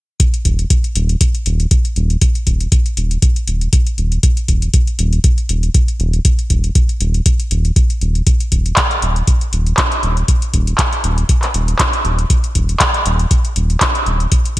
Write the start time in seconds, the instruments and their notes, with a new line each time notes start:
0.20 kick, closed hi-hat
0.34 closed hi-hat
0.45 analog synth bass D#1, kick, closed hi-hat
0.59 closed hi-hat
0.70 kick, closed hi-hat
0.84 closed hi-hat
0.95 analog synth bass D#1, closed hi-hat
1.09 closed hi-hat
1.21 kick, closed hi-hat
1.35 closed hi-hat
1.46 analog synth bass D#1, closed hi-hat
1.60 closed hi-hat
1.71 kick, closed hi-hat
1.85 closed hi-hat
1.96 analog synth bass D#1, closed hi-hat
2.10 closed hi-hat
2.21 kick, closed hi-hat
2.35 closed hi-hat
2.47 analog synth bass D#1, kick, closed hi-hat
2.60 closed hi-hat
2.72 kick, closed hi-hat
2.86 closed hi-hat
2.97 analog synth bass D#1, closed hi-hat
3.11 closed hi-hat
3.22 kick, closed hi-hat
3.36 closed hi-hat
3.48 analog synth bass D#1, closed hi-hat
3.61 closed hi-hat
3.73 kick, closed hi-hat
3.87 closed hi-hat
3.98 analog synth bass D#1, closed hi-hat
4.12 closed hi-hat
4.23 kick, closed hi-hat
4.37 closed hi-hat
4.48 analog synth bass D#1, kick, closed hi-hat
4.62 closed hi-hat
4.74 kick, closed hi-hat
4.87 closed hi-hat
4.99 analog synth bass D#1, closed hi-hat
5.13 closed hi-hat
5.24 kick, closed hi-hat
5.38 closed hi-hat
5.49 analog synth bass D#1, closed hi-hat
5.63 closed hi-hat
5.74 kick, closed hi-hat
5.88 closed hi-hat
6.00 analog synth bass D#1, closed hi-hat
6.13 closed hi-hat
6.25 kick, closed hi-hat
6.39 closed hi-hat
6.50 analog synth bass D#1, kick, closed hi-hat
6.64 closed hi-hat
6.75 kick, closed hi-hat
6.89 closed hi-hat
7.00 analog synth bass D#1, closed hi-hat
7.14 closed hi-hat
7.26 kick, closed hi-hat
7.40 closed hi-hat
7.51 analog synth bass D#1, closed hi-hat
7.65 closed hi-hat
7.76 kick, closed hi-hat
7.90 closed hi-hat
8.01 analog synth bass D#1, closed hi-hat
8.15 closed hi-hat
8.27 kick, closed hi-hat
8.40 closed hi-hat
8.52 analog synth bass D#1, kick, closed hi-hat
8.66 closed hi-hat
8.77 kick, clap, closed hi-hat
8.91 closed hi-hat
9.02 analog synth bass D#1, closed hi-hat
9.16 closed hi-hat
9.27 kick, closed hi-hat
9.41 closed hi-hat
9.53 analog synth bass D#1, closed hi-hat
9.67 closed hi-hat
9.77 kick, clap, closed hi-hat
9.92 closed hi-hat
10.03 analog synth bass D#1, closed hi-hat
10.17 closed hi-hat
10.28 kick, closed hi-hat
10.42 closed hi-hat
10.53 analog synth bass D#1, kick, closed hi-hat
10.67 closed hi-hat
10.78 kick, clap, closed hi-hat
10.93 closed hi-hat
11.04 analog synth bass D#1, closed hi-hat
11.18 closed hi-hat
11.29 kick, closed hi-hat
11.42 clap, closed hi-hat
11.54 analog synth bass D#1, closed hi-hat
11.68 closed hi-hat
11.79 kick, clap, closed hi-hat
11.93 closed hi-hat
12.05 analog synth bass D#1, closed hi-hat
12.19 closed hi-hat
12.30 kick, closed hi-hat
12.44 closed hi-hat
12.55 analog synth bass D#1, kick, closed hi-hat
12.69 closed hi-hat
12.80 kick, clap, closed hi-hat
12.94 closed hi-hat
13.06 analog synth bass D#1, closed hi-hat
13.19 closed hi-hat
13.31 kick, closed hi-hat
13.45 closed hi-hat
13.56 analog synth bass D#1, closed hi-hat
13.70 closed hi-hat
13.81 kick, clap, closed hi-hat
13.95 closed hi-hat
14.06 analog synth bass D#1, closed hi-hat
14.20 closed hi-hat
14.32 kick, closed hi-hat
14.45 closed hi-hat